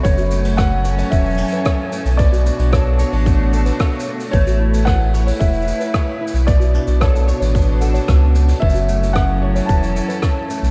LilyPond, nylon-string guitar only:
\new Staff \with { instrumentName = "Nylon-string guitar" } { \time 4/4 \key b \dorian \tempo 4 = 112 fis,8 a8 cis'8 cis''8 e8 cis'8 cis''8 a8 | b,8 d'8 a'8 cis''8 a8 a'8 cis''8 d'8 | a8 e'8 gis'8 cis''8 e'8 gis'8 cis''8 e'8 | b,8 d'8 a'8 cis''8 b8 a'8 cis''8 d'8 |
fis,8 a8 cis'8 cis''8 e8 cis'8 cis''8 a8 | }